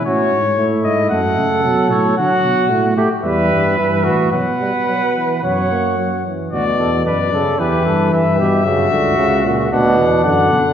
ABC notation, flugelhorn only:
X:1
M:4/4
L:1/8
Q:1/4=113
K:F#m
V:1 name="Flugelhorn"
F z E2 A4 | [K:Bm] F3 G B3 F | B4 c3 z | F A B A G A B G |
F4 D D3 |]